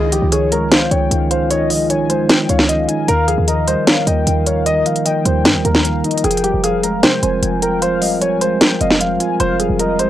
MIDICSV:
0, 0, Header, 1, 7, 480
1, 0, Start_track
1, 0, Key_signature, -4, "minor"
1, 0, Tempo, 394737
1, 1830, Time_signature, 4, 2, 24, 8
1, 12280, End_track
2, 0, Start_track
2, 0, Title_t, "Soft synth lead"
2, 0, Program_c, 0, 80
2, 0, Note_on_c, 0, 75, 97
2, 360, Note_off_c, 0, 75, 0
2, 390, Note_on_c, 0, 73, 92
2, 841, Note_off_c, 0, 73, 0
2, 872, Note_on_c, 0, 77, 87
2, 1099, Note_off_c, 0, 77, 0
2, 1106, Note_on_c, 0, 79, 85
2, 1559, Note_off_c, 0, 79, 0
2, 1590, Note_on_c, 0, 77, 78
2, 1818, Note_off_c, 0, 77, 0
2, 1831, Note_on_c, 0, 75, 100
2, 2281, Note_off_c, 0, 75, 0
2, 2314, Note_on_c, 0, 80, 86
2, 2763, Note_off_c, 0, 80, 0
2, 2797, Note_on_c, 0, 79, 102
2, 3021, Note_off_c, 0, 79, 0
2, 3032, Note_on_c, 0, 77, 86
2, 3482, Note_off_c, 0, 77, 0
2, 3507, Note_on_c, 0, 80, 93
2, 3736, Note_off_c, 0, 80, 0
2, 3752, Note_on_c, 0, 77, 112
2, 4202, Note_off_c, 0, 77, 0
2, 4233, Note_on_c, 0, 75, 89
2, 4683, Note_off_c, 0, 75, 0
2, 4705, Note_on_c, 0, 77, 93
2, 4935, Note_off_c, 0, 77, 0
2, 4951, Note_on_c, 0, 79, 96
2, 5401, Note_off_c, 0, 79, 0
2, 5431, Note_on_c, 0, 77, 89
2, 5658, Note_off_c, 0, 77, 0
2, 5669, Note_on_c, 0, 75, 127
2, 6121, Note_off_c, 0, 75, 0
2, 6155, Note_on_c, 0, 79, 92
2, 7064, Note_off_c, 0, 79, 0
2, 7104, Note_on_c, 0, 77, 83
2, 7335, Note_off_c, 0, 77, 0
2, 7354, Note_on_c, 0, 75, 92
2, 7580, Note_off_c, 0, 75, 0
2, 7588, Note_on_c, 0, 79, 102
2, 8040, Note_off_c, 0, 79, 0
2, 8071, Note_on_c, 0, 77, 87
2, 8522, Note_off_c, 0, 77, 0
2, 8552, Note_on_c, 0, 79, 92
2, 8779, Note_off_c, 0, 79, 0
2, 8791, Note_on_c, 0, 80, 84
2, 9242, Note_off_c, 0, 80, 0
2, 9269, Note_on_c, 0, 79, 88
2, 9497, Note_off_c, 0, 79, 0
2, 9506, Note_on_c, 0, 77, 111
2, 9959, Note_off_c, 0, 77, 0
2, 9987, Note_on_c, 0, 80, 88
2, 10439, Note_off_c, 0, 80, 0
2, 10471, Note_on_c, 0, 79, 96
2, 10698, Note_off_c, 0, 79, 0
2, 10713, Note_on_c, 0, 77, 79
2, 11163, Note_off_c, 0, 77, 0
2, 11189, Note_on_c, 0, 80, 91
2, 11417, Note_off_c, 0, 80, 0
2, 11426, Note_on_c, 0, 77, 108
2, 11879, Note_off_c, 0, 77, 0
2, 11915, Note_on_c, 0, 75, 87
2, 12280, Note_off_c, 0, 75, 0
2, 12280, End_track
3, 0, Start_track
3, 0, Title_t, "Grand piano"
3, 0, Program_c, 1, 0
3, 151, Note_on_c, 1, 67, 81
3, 347, Note_off_c, 1, 67, 0
3, 391, Note_on_c, 1, 68, 89
3, 587, Note_off_c, 1, 68, 0
3, 630, Note_on_c, 1, 70, 85
3, 826, Note_off_c, 1, 70, 0
3, 868, Note_on_c, 1, 72, 92
3, 1065, Note_off_c, 1, 72, 0
3, 1109, Note_on_c, 1, 73, 88
3, 1561, Note_off_c, 1, 73, 0
3, 1590, Note_on_c, 1, 72, 81
3, 1787, Note_off_c, 1, 72, 0
3, 1833, Note_on_c, 1, 73, 93
3, 2028, Note_off_c, 1, 73, 0
3, 2073, Note_on_c, 1, 75, 77
3, 2268, Note_off_c, 1, 75, 0
3, 2310, Note_on_c, 1, 73, 75
3, 2506, Note_off_c, 1, 73, 0
3, 2549, Note_on_c, 1, 72, 75
3, 3000, Note_off_c, 1, 72, 0
3, 3033, Note_on_c, 1, 73, 86
3, 3228, Note_off_c, 1, 73, 0
3, 3270, Note_on_c, 1, 75, 88
3, 3721, Note_off_c, 1, 75, 0
3, 3750, Note_on_c, 1, 70, 113
3, 3946, Note_off_c, 1, 70, 0
3, 3988, Note_on_c, 1, 68, 88
3, 4185, Note_off_c, 1, 68, 0
3, 4231, Note_on_c, 1, 70, 86
3, 4427, Note_off_c, 1, 70, 0
3, 4472, Note_on_c, 1, 72, 91
3, 4667, Note_off_c, 1, 72, 0
3, 4712, Note_on_c, 1, 73, 79
3, 4908, Note_off_c, 1, 73, 0
3, 4948, Note_on_c, 1, 75, 86
3, 5400, Note_off_c, 1, 75, 0
3, 5430, Note_on_c, 1, 73, 83
3, 5626, Note_off_c, 1, 73, 0
3, 5670, Note_on_c, 1, 75, 111
3, 5866, Note_off_c, 1, 75, 0
3, 5911, Note_on_c, 1, 77, 77
3, 6107, Note_off_c, 1, 77, 0
3, 6147, Note_on_c, 1, 75, 81
3, 6344, Note_off_c, 1, 75, 0
3, 6390, Note_on_c, 1, 72, 79
3, 6841, Note_off_c, 1, 72, 0
3, 6871, Note_on_c, 1, 70, 78
3, 7547, Note_off_c, 1, 70, 0
3, 7592, Note_on_c, 1, 68, 94
3, 7788, Note_off_c, 1, 68, 0
3, 7827, Note_on_c, 1, 67, 83
3, 8025, Note_off_c, 1, 67, 0
3, 8070, Note_on_c, 1, 68, 89
3, 8266, Note_off_c, 1, 68, 0
3, 8310, Note_on_c, 1, 70, 80
3, 8506, Note_off_c, 1, 70, 0
3, 8549, Note_on_c, 1, 72, 87
3, 8746, Note_off_c, 1, 72, 0
3, 8789, Note_on_c, 1, 72, 80
3, 9241, Note_off_c, 1, 72, 0
3, 9270, Note_on_c, 1, 70, 85
3, 9466, Note_off_c, 1, 70, 0
3, 9511, Note_on_c, 1, 72, 97
3, 9707, Note_off_c, 1, 72, 0
3, 9748, Note_on_c, 1, 75, 74
3, 9945, Note_off_c, 1, 75, 0
3, 9989, Note_on_c, 1, 73, 84
3, 10186, Note_off_c, 1, 73, 0
3, 10230, Note_on_c, 1, 72, 85
3, 10681, Note_off_c, 1, 72, 0
3, 10712, Note_on_c, 1, 75, 88
3, 10907, Note_off_c, 1, 75, 0
3, 10949, Note_on_c, 1, 77, 88
3, 11401, Note_off_c, 1, 77, 0
3, 11430, Note_on_c, 1, 72, 116
3, 11626, Note_off_c, 1, 72, 0
3, 11668, Note_on_c, 1, 68, 89
3, 11865, Note_off_c, 1, 68, 0
3, 11911, Note_on_c, 1, 70, 85
3, 12107, Note_off_c, 1, 70, 0
3, 12152, Note_on_c, 1, 72, 93
3, 12280, Note_off_c, 1, 72, 0
3, 12280, End_track
4, 0, Start_track
4, 0, Title_t, "French horn section"
4, 0, Program_c, 2, 60
4, 0, Note_on_c, 2, 56, 77
4, 0, Note_on_c, 2, 61, 85
4, 0, Note_on_c, 2, 63, 80
4, 0, Note_on_c, 2, 65, 93
4, 3711, Note_off_c, 2, 56, 0
4, 3711, Note_off_c, 2, 61, 0
4, 3711, Note_off_c, 2, 63, 0
4, 3711, Note_off_c, 2, 65, 0
4, 3750, Note_on_c, 2, 51, 86
4, 3750, Note_on_c, 2, 58, 77
4, 3750, Note_on_c, 2, 65, 78
4, 3750, Note_on_c, 2, 70, 91
4, 7551, Note_off_c, 2, 58, 0
4, 7552, Note_off_c, 2, 51, 0
4, 7552, Note_off_c, 2, 65, 0
4, 7590, Note_on_c, 2, 53, 87
4, 7590, Note_on_c, 2, 60, 77
4, 7590, Note_on_c, 2, 65, 95
4, 12280, Note_off_c, 2, 53, 0
4, 12280, Note_off_c, 2, 60, 0
4, 12280, Note_off_c, 2, 65, 0
4, 12280, Note_off_c, 2, 70, 0
4, 12280, End_track
5, 0, Start_track
5, 0, Title_t, "Tine electric piano"
5, 0, Program_c, 3, 4
5, 0, Note_on_c, 3, 51, 87
5, 146, Control_c, 3, 64, 127
5, 150, Note_on_c, 3, 53, 80
5, 375, Note_off_c, 3, 51, 0
5, 389, Note_on_c, 3, 51, 78
5, 630, Note_on_c, 3, 56, 95
5, 854, Note_off_c, 3, 51, 0
5, 869, Note_on_c, 3, 51, 78
5, 1108, Note_on_c, 3, 61, 79
5, 1334, Note_off_c, 3, 51, 0
5, 1349, Note_on_c, 3, 51, 85
5, 1350, Note_off_c, 3, 53, 0
5, 1589, Note_on_c, 3, 63, 83
5, 1816, Note_off_c, 3, 51, 0
5, 1830, Note_off_c, 3, 56, 0
5, 1831, Note_on_c, 3, 51, 99
5, 2068, Note_on_c, 3, 53, 76
5, 2293, Note_off_c, 3, 51, 0
5, 2308, Note_on_c, 3, 51, 82
5, 2309, Note_off_c, 3, 61, 0
5, 2551, Note_on_c, 3, 56, 96
5, 2774, Note_off_c, 3, 51, 0
5, 2790, Note_off_c, 3, 63, 0
5, 3030, Note_on_c, 3, 61, 88
5, 3269, Note_off_c, 3, 53, 0
5, 3270, Note_on_c, 3, 51, 88
5, 3510, Note_on_c, 3, 63, 88
5, 3736, Note_off_c, 3, 51, 0
5, 3750, Note_off_c, 3, 56, 0
5, 3750, Note_off_c, 3, 61, 0
5, 3750, Note_off_c, 3, 63, 0
5, 3750, Note_on_c, 3, 51, 90
5, 3768, Control_c, 3, 64, 0
5, 3991, Note_on_c, 3, 53, 84
5, 4001, Control_c, 3, 64, 127
5, 4216, Note_off_c, 3, 51, 0
5, 4471, Note_on_c, 3, 55, 97
5, 4709, Note_on_c, 3, 51, 76
5, 4951, Note_on_c, 3, 58, 81
5, 5175, Note_off_c, 3, 51, 0
5, 5189, Note_on_c, 3, 51, 90
5, 5190, Note_off_c, 3, 53, 0
5, 5429, Note_on_c, 3, 63, 79
5, 5655, Note_off_c, 3, 51, 0
5, 5669, Note_on_c, 3, 51, 88
5, 5671, Note_off_c, 3, 55, 0
5, 5909, Note_on_c, 3, 53, 79
5, 6137, Note_off_c, 3, 51, 0
5, 6150, Note_off_c, 3, 58, 0
5, 6151, Note_on_c, 3, 51, 78
5, 6390, Note_on_c, 3, 55, 97
5, 6616, Note_off_c, 3, 51, 0
5, 6630, Note_off_c, 3, 63, 0
5, 6631, Note_on_c, 3, 51, 76
5, 6872, Note_on_c, 3, 58, 78
5, 7097, Note_off_c, 3, 51, 0
5, 7109, Note_off_c, 3, 53, 0
5, 7111, Note_on_c, 3, 51, 88
5, 7352, Note_on_c, 3, 63, 88
5, 7590, Note_off_c, 3, 55, 0
5, 7591, Note_off_c, 3, 51, 0
5, 7591, Note_off_c, 3, 58, 0
5, 7591, Note_off_c, 3, 63, 0
5, 7591, Note_on_c, 3, 53, 92
5, 7606, Control_c, 3, 64, 0
5, 7830, Note_on_c, 3, 55, 75
5, 7839, Control_c, 3, 64, 127
5, 8056, Note_off_c, 3, 53, 0
5, 8071, Note_on_c, 3, 53, 85
5, 8311, Note_on_c, 3, 56, 102
5, 8535, Note_off_c, 3, 53, 0
5, 8550, Note_on_c, 3, 53, 70
5, 8789, Note_on_c, 3, 60, 78
5, 9015, Note_off_c, 3, 53, 0
5, 9029, Note_on_c, 3, 53, 85
5, 9030, Note_off_c, 3, 55, 0
5, 9269, Note_on_c, 3, 65, 84
5, 9495, Note_off_c, 3, 53, 0
5, 9510, Note_on_c, 3, 53, 90
5, 9511, Note_off_c, 3, 56, 0
5, 9748, Note_on_c, 3, 55, 83
5, 9975, Note_off_c, 3, 53, 0
5, 9989, Note_off_c, 3, 60, 0
5, 9990, Note_on_c, 3, 53, 79
5, 10230, Note_on_c, 3, 56, 92
5, 10455, Note_off_c, 3, 53, 0
5, 10469, Note_off_c, 3, 65, 0
5, 10470, Note_on_c, 3, 53, 72
5, 10710, Note_on_c, 3, 60, 84
5, 10936, Note_off_c, 3, 53, 0
5, 10949, Note_off_c, 3, 55, 0
5, 10951, Note_on_c, 3, 53, 89
5, 11189, Note_on_c, 3, 65, 84
5, 11414, Note_off_c, 3, 53, 0
5, 11429, Note_on_c, 3, 53, 93
5, 11430, Note_off_c, 3, 56, 0
5, 11669, Note_on_c, 3, 55, 86
5, 11896, Note_off_c, 3, 53, 0
5, 11910, Note_off_c, 3, 60, 0
5, 11911, Note_on_c, 3, 53, 74
5, 12149, Note_on_c, 3, 56, 94
5, 12280, Note_off_c, 3, 53, 0
5, 12280, Note_off_c, 3, 55, 0
5, 12280, Note_off_c, 3, 56, 0
5, 12280, Note_off_c, 3, 65, 0
5, 12280, End_track
6, 0, Start_track
6, 0, Title_t, "808-style bass"
6, 0, Program_c, 4, 38
6, 0, Note_on_c, 4, 37, 114
6, 255, Note_off_c, 4, 37, 0
6, 270, Note_on_c, 4, 37, 105
6, 1076, Note_off_c, 4, 37, 0
6, 1109, Note_on_c, 4, 37, 110
6, 1340, Note_off_c, 4, 37, 0
6, 1350, Note_on_c, 4, 37, 112
6, 2310, Note_on_c, 4, 36, 98
6, 2328, Note_off_c, 4, 37, 0
6, 2766, Note_off_c, 4, 36, 0
6, 3029, Note_on_c, 4, 37, 109
6, 3490, Note_off_c, 4, 37, 0
6, 3749, Note_on_c, 4, 39, 113
6, 4095, Note_off_c, 4, 39, 0
6, 4109, Note_on_c, 4, 39, 102
6, 4570, Note_off_c, 4, 39, 0
6, 4949, Note_on_c, 4, 39, 109
6, 5180, Note_off_c, 4, 39, 0
6, 5190, Note_on_c, 4, 39, 107
6, 5881, Note_off_c, 4, 39, 0
6, 6390, Note_on_c, 4, 39, 110
6, 6630, Note_on_c, 4, 43, 98
6, 6648, Note_off_c, 4, 39, 0
6, 6750, Note_on_c, 4, 39, 102
6, 6768, Note_off_c, 4, 43, 0
6, 6864, Note_off_c, 4, 39, 0
6, 6869, Note_on_c, 4, 39, 109
6, 7330, Note_off_c, 4, 39, 0
6, 7590, Note_on_c, 4, 29, 111
6, 7935, Note_off_c, 4, 29, 0
6, 7949, Note_on_c, 4, 29, 106
6, 8550, Note_on_c, 4, 48, 102
6, 8568, Note_off_c, 4, 29, 0
6, 8778, Note_off_c, 4, 48, 0
6, 8790, Note_on_c, 4, 29, 107
6, 9020, Note_off_c, 4, 29, 0
6, 9030, Note_on_c, 4, 29, 109
6, 9990, Note_on_c, 4, 27, 103
6, 10008, Note_off_c, 4, 29, 0
6, 10446, Note_off_c, 4, 27, 0
6, 10710, Note_on_c, 4, 29, 108
6, 11171, Note_off_c, 4, 29, 0
6, 11430, Note_on_c, 4, 29, 112
6, 11776, Note_off_c, 4, 29, 0
6, 11790, Note_on_c, 4, 29, 99
6, 12251, Note_off_c, 4, 29, 0
6, 12280, End_track
7, 0, Start_track
7, 0, Title_t, "Drums"
7, 149, Note_on_c, 9, 42, 67
7, 271, Note_off_c, 9, 42, 0
7, 390, Note_on_c, 9, 42, 89
7, 512, Note_off_c, 9, 42, 0
7, 631, Note_on_c, 9, 42, 75
7, 753, Note_off_c, 9, 42, 0
7, 870, Note_on_c, 9, 38, 127
7, 870, Note_on_c, 9, 42, 86
7, 991, Note_off_c, 9, 42, 0
7, 992, Note_off_c, 9, 38, 0
7, 1110, Note_on_c, 9, 42, 72
7, 1232, Note_off_c, 9, 42, 0
7, 1352, Note_on_c, 9, 42, 92
7, 1474, Note_off_c, 9, 42, 0
7, 1591, Note_on_c, 9, 42, 84
7, 1712, Note_off_c, 9, 42, 0
7, 1830, Note_on_c, 9, 42, 90
7, 1952, Note_off_c, 9, 42, 0
7, 2069, Note_on_c, 9, 46, 72
7, 2191, Note_off_c, 9, 46, 0
7, 2310, Note_on_c, 9, 42, 86
7, 2431, Note_off_c, 9, 42, 0
7, 2550, Note_on_c, 9, 42, 78
7, 2672, Note_off_c, 9, 42, 0
7, 2789, Note_on_c, 9, 42, 84
7, 2790, Note_on_c, 9, 38, 121
7, 2911, Note_off_c, 9, 38, 0
7, 2911, Note_off_c, 9, 42, 0
7, 3030, Note_on_c, 9, 42, 73
7, 3148, Note_on_c, 9, 38, 67
7, 3151, Note_off_c, 9, 42, 0
7, 3270, Note_off_c, 9, 38, 0
7, 3271, Note_on_c, 9, 42, 94
7, 3393, Note_off_c, 9, 42, 0
7, 3510, Note_on_c, 9, 42, 87
7, 3632, Note_off_c, 9, 42, 0
7, 3750, Note_on_c, 9, 42, 92
7, 3871, Note_off_c, 9, 42, 0
7, 3989, Note_on_c, 9, 42, 67
7, 4111, Note_off_c, 9, 42, 0
7, 4230, Note_on_c, 9, 42, 87
7, 4351, Note_off_c, 9, 42, 0
7, 4470, Note_on_c, 9, 42, 74
7, 4592, Note_off_c, 9, 42, 0
7, 4709, Note_on_c, 9, 42, 85
7, 4710, Note_on_c, 9, 38, 124
7, 4831, Note_off_c, 9, 42, 0
7, 4832, Note_off_c, 9, 38, 0
7, 4949, Note_on_c, 9, 42, 73
7, 5071, Note_off_c, 9, 42, 0
7, 5191, Note_on_c, 9, 42, 94
7, 5312, Note_off_c, 9, 42, 0
7, 5430, Note_on_c, 9, 42, 82
7, 5551, Note_off_c, 9, 42, 0
7, 5669, Note_on_c, 9, 42, 94
7, 5791, Note_off_c, 9, 42, 0
7, 5909, Note_on_c, 9, 42, 57
7, 5909, Note_on_c, 9, 46, 70
7, 6029, Note_off_c, 9, 42, 0
7, 6029, Note_on_c, 9, 42, 58
7, 6030, Note_off_c, 9, 46, 0
7, 6149, Note_off_c, 9, 42, 0
7, 6149, Note_on_c, 9, 42, 89
7, 6271, Note_off_c, 9, 42, 0
7, 6390, Note_on_c, 9, 42, 75
7, 6511, Note_off_c, 9, 42, 0
7, 6629, Note_on_c, 9, 42, 83
7, 6630, Note_on_c, 9, 38, 127
7, 6750, Note_off_c, 9, 42, 0
7, 6751, Note_off_c, 9, 38, 0
7, 6869, Note_on_c, 9, 42, 70
7, 6988, Note_on_c, 9, 38, 65
7, 6991, Note_off_c, 9, 42, 0
7, 7110, Note_off_c, 9, 38, 0
7, 7111, Note_on_c, 9, 42, 91
7, 7233, Note_off_c, 9, 42, 0
7, 7350, Note_on_c, 9, 42, 52
7, 7430, Note_off_c, 9, 42, 0
7, 7430, Note_on_c, 9, 42, 57
7, 7510, Note_off_c, 9, 42, 0
7, 7510, Note_on_c, 9, 42, 68
7, 7590, Note_off_c, 9, 42, 0
7, 7590, Note_on_c, 9, 42, 70
7, 7670, Note_off_c, 9, 42, 0
7, 7670, Note_on_c, 9, 42, 76
7, 7750, Note_off_c, 9, 42, 0
7, 7750, Note_on_c, 9, 42, 86
7, 7830, Note_off_c, 9, 42, 0
7, 7830, Note_on_c, 9, 42, 67
7, 7951, Note_off_c, 9, 42, 0
7, 8070, Note_on_c, 9, 42, 89
7, 8192, Note_off_c, 9, 42, 0
7, 8311, Note_on_c, 9, 42, 76
7, 8432, Note_off_c, 9, 42, 0
7, 8550, Note_on_c, 9, 42, 84
7, 8551, Note_on_c, 9, 38, 124
7, 8672, Note_off_c, 9, 38, 0
7, 8672, Note_off_c, 9, 42, 0
7, 8790, Note_on_c, 9, 42, 74
7, 8912, Note_off_c, 9, 42, 0
7, 9032, Note_on_c, 9, 42, 94
7, 9154, Note_off_c, 9, 42, 0
7, 9271, Note_on_c, 9, 42, 83
7, 9392, Note_off_c, 9, 42, 0
7, 9510, Note_on_c, 9, 42, 92
7, 9632, Note_off_c, 9, 42, 0
7, 9750, Note_on_c, 9, 46, 75
7, 9871, Note_off_c, 9, 46, 0
7, 9990, Note_on_c, 9, 42, 90
7, 10112, Note_off_c, 9, 42, 0
7, 10231, Note_on_c, 9, 42, 78
7, 10353, Note_off_c, 9, 42, 0
7, 10470, Note_on_c, 9, 38, 126
7, 10470, Note_on_c, 9, 42, 83
7, 10591, Note_off_c, 9, 42, 0
7, 10592, Note_off_c, 9, 38, 0
7, 10710, Note_on_c, 9, 42, 70
7, 10829, Note_on_c, 9, 38, 65
7, 10831, Note_off_c, 9, 42, 0
7, 10950, Note_off_c, 9, 38, 0
7, 10951, Note_on_c, 9, 42, 93
7, 11073, Note_off_c, 9, 42, 0
7, 11190, Note_on_c, 9, 42, 86
7, 11311, Note_off_c, 9, 42, 0
7, 11430, Note_on_c, 9, 42, 94
7, 11551, Note_off_c, 9, 42, 0
7, 11669, Note_on_c, 9, 42, 68
7, 11791, Note_off_c, 9, 42, 0
7, 11910, Note_on_c, 9, 42, 93
7, 12032, Note_off_c, 9, 42, 0
7, 12151, Note_on_c, 9, 42, 73
7, 12272, Note_off_c, 9, 42, 0
7, 12280, End_track
0, 0, End_of_file